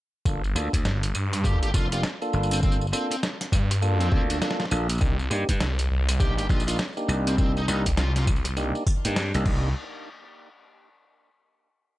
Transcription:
0.25 detuned saw bass G1, tonewheel organ A#3 D4 F4 A4, kick, tambourine
0.44 tambourine
0.55 slap bass D2, tonewheel organ A#3 D4 F4 A4, cross-stick, tambourine
0.73 slap bass D2, kick, closed hi-hat, tambourine
0.85 detuned saw bass G1, snare, tambourine
1.03 closed hi-hat, tambourine
1.15 detuned saw bass G2, tambourine
1.33 cross-stick, closed hi-hat, tambourine
1.44 tonewheel organ A#3 D4 F4 A4, lead electric guitar G4, kick, tambourine
1.63 lead electric guitar G4, closed hi-hat
1.74 slap bass F1, tonewheel organ A#3 D4 F4 A4, lead electric guitar F4, kick, tambourine
1.92 tonewheel organ A#3 D4 F4 G4, lead electric guitar F4, closed hi-hat, tambourine
2.03 snare, tambourine
2.22 tonewheel organ A#3 D4 F4 A4, tambourine
2.33 slap bass G1, tambourine
2.43 tambourine
2.51 lead electric guitar C4, closed hi-hat, tambourine
2.53 tambourine
2.63 tonewheel organ A#3 D4 F4 A4, lead electric guitar C4, kick, tambourine
2.72 tambourine
2.81 tambourine
2.87 tambourine
2.93 tonewheel organ A#3 D4 F4 A4, lead electric guitar C4, cross-stick, tambourine
3.11 lead electric guitar C4, closed hi-hat
3.23 snare, tambourine
3.41 snare, closed hi-hat, tambourine
3.52 detuned saw bass G2, kick, tambourine
3.71 cross-stick, closed hi-hat, tambourine
3.82 tonewheel organ A#3 D4 F4 A4, tambourine
4.00 lead electric guitar C4, closed hi-hat, tambourine
4.12 slap bass D2, tonewheel organ A#3 D4 F4 A4, kick
4.30 lead electric guitar D4, closed hi-hat, tambourine
4.41 tonewheel organ A#3 D4 F4 A4, lead electric guitar D4, snare, tambourine
4.51 snare
4.60 snare, tambourine
4.65 snare
4.71 slap bass A#1, tonewheel organ A#3 D4 F4 A4, tambourine
4.89 closed hi-hat, tambourine
4.93 tambourine
4.95 tambourine
4.98 tonewheel organ A#3 D4 D#4 G4, kick, tambourine
5.01 detuned saw bass C2, tambourine
5.19 tambourine
5.31 slap bass G2, tonewheel organ A#3 D4 D#4 G4, cross-stick, tambourine
5.49 slap bass G2, kick, closed hi-hat, tambourine
5.60 detuned saw bass C2, snare, tambourine
5.79 closed hi-hat, tambourine
5.91 detuned saw bass C2
6.09 cross-stick, closed hi-hat, tambourine
6.20 tonewheel organ A#3 D4 D#4 G4, lead electric guitar G4, kick, tambourine
6.38 lead electric guitar G4, closed hi-hat, tambourine
6.49 slap bass A#1, tonewheel organ A#3 D4 D#4 G4, lead electric guitar F4, kick, tambourine
6.60 tambourine
6.67 tonewheel organ A#3 D4 D#4 F4, lead electric guitar F4, closed hi-hat, tambourine
6.71 tambourine
6.73 tambourine
6.76 snare, tambourine
6.79 tambourine
6.84 tambourine
6.93 tambourine
6.97 tonewheel organ A#3 D4 D#4 G4, tambourine
7.08 slap bass C2, tambourine
7.27 lead electric guitar C4, closed hi-hat, tambourine
7.38 tonewheel organ A#3 D4 D#4 G4, lead electric guitar C4, kick, tambourine
7.57 lead electric guitar D#4, tambourine
7.68 slap bass C2, tonewheel organ A#3 D4 D#4 G4, lead electric guitar D#4, cross-stick, tambourine
7.86 detuned saw bass C2, kick, closed hi-hat, tambourine
7.97 lead electric guitar F4, snare, tambourine
8.16 lead electric guitar F4, snare, closed hi-hat, tambourine
8.21 tambourine
8.27 kick, tambourine
8.36 tambourine
8.45 cross-stick, closed hi-hat, tambourine
8.57 tonewheel organ A#3 D4 D#4 G4, tambourine
8.75 tambourine
8.87 kick, tambourine
9.05 slap bass G2, tonewheel organ A#3 D4 D#4 G4, closed hi-hat, tambourine
9.16 snare, tambourine
9.34 slap bass C2, tonewheel organ A#3 D4 D#4 G4, closed hi-hat, tambourine
9.46 detuned saw bass C2, tonewheel organ A#3 D4 D#4 G4, kick, crash

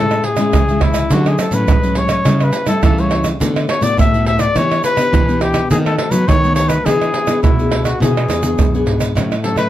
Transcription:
Already playing: nylon-string guitar A2 G#3 C#4 E4, trumpet A4
0.11 pandeiro, tamborim, shaker
0.24 trumpet G#4, pandeiro
0.37 nylon-string guitar G#3 C#4 E4, pandeiro, tamborim, shaker
0.53 nylon-string guitar C#3 E3, pandeiro, tamborim, shaker, surdo
0.69 nylon-string guitar G#3 C#4 E4, pandeiro, shaker
0.81 trumpet E4, pandeiro, tamborim, surdo
0.94 pandeiro, tamborim, shaker
1.11 nylon-string guitar D3 F#3 A3 C#4, trumpet F#4, pandeiro, shaker, surdo
1.26 trumpet G#4, pandeiro, tamborim, shaker
1.39 trumpet A4, pandeiro, tamborim, shaker
1.51 nylon-string guitar A2 F#3 A3 C#4, trumpet B4, pandeiro, shaker
1.68 nylon-string guitar A2 G#3, pandeiro, tamborim, shaker, surdo
1.83 nylon-string guitar F#3 C#4, pandeiro, shaker
1.95 trumpet C#5, pandeiro
2.09 trumpet C#5, pandeiro, tamborim, shaker
2.25 nylon-string guitar C#3 G3 A3 E4, pandeiro, tamborim, shaker, surdo
2.40 trumpet B4, pandeiro, tamborim, shaker
2.53 pandeiro, shaker
2.67 nylon-string guitar G3 A3 E4, trumpet A4, pandeiro, tamborim, shaker
2.83 nylon-string guitar C#3 E3, trumpet A4, pandeiro, tamborim, shaker, surdo
2.98 nylon-string guitar G3 A3 E4, trumpet C#5, pandeiro, shaker
3.11 pandeiro, tamborim
3.24 pandeiro, tamborim, shaker
3.40 nylon-string guitar D3 A3 B3 F#4, pandeiro, shaker, surdo
3.56 pandeiro, tamborim, shaker
3.69 trumpet C#5, pandeiro, tamborim
3.81 nylon-string guitar A2 A3 B3 F#4, trumpet D5, pandeiro, shaker
3.98 nylon-string guitar A2, trumpet E5, pandeiro, tamborim, shaker, surdo
4.13 nylon-string guitar A3 B3 F#4, pandeiro, shaker
4.26 trumpet E5, pandeiro
4.39 trumpet D5, pandeiro, tamborim, shaker
4.56 nylon-string guitar E3 B3 D4 G4, trumpet C#5, pandeiro, tamborim, shaker, surdo
4.71 pandeiro, tamborim, shaker
4.84 trumpet B4, pandeiro, shaker
4.96 nylon-string guitar B3 D4 G4, pandeiro, tamborim, shaker
5.13 nylon-string guitar B2 E3, pandeiro, tamborim, shaker, surdo
5.28 nylon-string guitar B3 D4 G4, pandeiro, shaker
5.41 trumpet G4, pandeiro, tamborim
5.54 pandeiro, tamborim, shaker
5.71 nylon-string guitar D#3 A3 B3 F#4, trumpet G#4, pandeiro, shaker, surdo
5.86 trumpet A4, pandeiro, tamborim, shaker
5.98 trumpet A4, pandeiro, tamborim
6.11 nylon-string guitar F#3 A3 B3 F#4, trumpet B4, pandeiro, shaker
6.28 nylon-string guitar D#3, trumpet C#5, pandeiro, tamborim, shaker, surdo
6.44 nylon-string guitar A3 B3 F#4, pandeiro, shaker
6.55 trumpet C#5, pandeiro, shaker
6.68 trumpet B4, pandeiro, tamborim, shaker
6.85 nylon-string guitar E3 B3 D4 G#4, trumpet G#4, pandeiro, tamborim, shaker, surdo
7.02 pandeiro, tamborim, shaker
7.14 pandeiro
7.27 nylon-string guitar B3 D4 G#4, pandeiro, tamborim, shaker
7.43 nylon-string guitar B2, trumpet E4, pandeiro, tamborim, shaker, surdo
7.59 nylon-string guitar B3 D4 G#4, pandeiro, shaker
7.71 pandeiro, tamborim
7.85 trumpet F#4, pandeiro, tamborim, shaker
8.00 nylon-string guitar B2 E3 B3 D4 G#4, trumpet G#4, pandeiro, shaker, surdo
8.17 pandeiro, tamborim, shaker
8.28 nylon-string guitar E2, pandeiro, tamborim, shaker
8.42 nylon-string guitar B3 D4 G#4, pandeiro, shaker
8.58 nylon-string guitar F#2 B2, pandeiro, tamborim, shaker, surdo
8.74 nylon-string guitar B3 D4 G#4, pandeiro, shaker
8.86 nylon-string guitar G#2, pandeiro
9.00 pandeiro, tamborim, shaker
9.15 nylon-string guitar A2 F#3 C#4 E4, pandeiro, tamborim, shaker, surdo
9.32 pandeiro, tamborim, shaker
9.44 nylon-string guitar F#3 C#4 E4, trumpet A4, pandeiro
9.56 nylon-string guitar A3, trumpet B4, pandeiro, tamborim, shaker

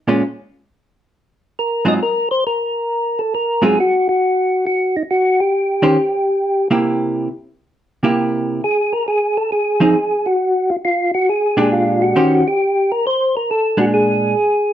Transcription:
0.08 hollow-body jazz guitar A#2 G#3 C#4 F4
1.59 tonewheel organ A#4
1.85 hollow-body jazz guitar G#2 F#3 C4 F4, tonewheel organ D#5
2.03 tonewheel organ A#4
2.31 tonewheel organ C5
2.47 tonewheel organ A#4
3.19 tonewheel organ A4
3.35 tonewheel organ A#4
3.62 hollow-body jazz guitar G#2 F#3 C4 F4, tonewheel organ G#4
3.80 tonewheel organ F#4
4.09 tonewheel organ F#4
4.67 tonewheel organ F#4
4.97 tonewheel organ D#4
5.11 tonewheel organ F#4
5.40 tonewheel organ G4
5.82 hollow-body jazz guitar D#3 C#4 G4 C5
6.71 hollow-body jazz guitar C3 A#3 E4 G4
8.03 hollow-body jazz guitar C3 A#3 E4 G4
8.64 tonewheel organ G#4
8.93 tonewheel organ A#4
9.08 tonewheel organ G#4
9.37 tonewheel organ A4
9.52 tonewheel organ G#4
9.80 hollow-body jazz guitar F3 C4 D#4 G#4
10.26 tonewheel organ F#4
10.70 tonewheel organ F4
10.85 tonewheel organ F4
11.14 tonewheel organ F#4
11.29 tonewheel organ G#4
11.57 hollow-body jazz guitar A#2 G#3 D4 G4
11.72 tonewheel organ F4
12.02 tonewheel organ F#4
12.16 hollow-body jazz guitar D#3 C#4 G4 C5
12.48 tonewheel organ G4
12.92 tonewheel organ A#4
13.07 tonewheel organ C5
13.37 tonewheel organ A#4
13.51 tonewheel organ A4
13.77 hollow-body jazz guitar A#2 G#3 D4, tonewheel organ F#4
13.94 tonewheel organ G#4

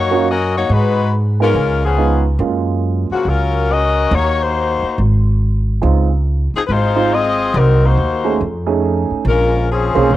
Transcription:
Already playing: upright bass F#2, saxophone section A#3 D#4 F#4 C#5
0.11 grand piano A#3 C#4 F4 F#4
0.30 saxophone section C#4 F#4 A#4 D#5
0.56 saxophone section A#3 D#4 F#4 C#5
0.69 upright bass G#2, saxophone section G#3 D#4 F#4 B4
1.40 grand piano G#3 B3 D#4 F4, saxophone section G#3 C#4 F4 A#4
1.54 upright bass C#2
1.84 saxophone section F3 B3 C#4 G#4
1.98 grand piano G#3 B3 D#4 F4
2.39 upright bass F#2, grand piano G#3 A#3 C#4 F4
3.10 saxophone section C#3 F3 A#3 F#4, muted upright bass stroke
3.25 upright bass C#2, saxophone section F#3 C#4 F4 A#4
3.72 saxophone section C#4 F#4 A#4 D#5
4.11 upright bass D#2, saxophone section A#3 D#4 F#4 C#5
4.42 saxophone section A#3 D#4 F#4 C5
4.83 muted upright bass stroke
4.98 upright bass G#1
5.82 upright bass C#2, grand piano G#3 C4 D#4 F4
6.54 saxophone section F3 C4 D#4 G#4, muted upright bass stroke
6.67 upright bass G#1, saxophone section B4
6.71 saxophone section G#3 D#4 F4 C5
6.95 grand piano G#3 C4 D#4 F4
7.13 saxophone section C4 F4 G#4 D#5
7.54 upright bass C2, saxophone section F#3 C4 D#4 A#4
7.85 saxophone section A#3 D#4 F#4 C5
7.97 upright bass D#2
8.24 grand piano A3 C#4 D#4 G#4
8.41 upright bass F2
8.67 grand piano A3 C#4 D#4 G#4
9.11 muted upright bass stroke
9.25 upright bass A#1, saxophone section G#3 C#4 F4 A#4
9.71 saxophone section F3 C4 C#4 G#4
9.95 upright bass B1, grand piano A#3 C#4 F4 G#4 C5
10.10 upright bass F1, saxophone section G#3 C#4 F4 C5

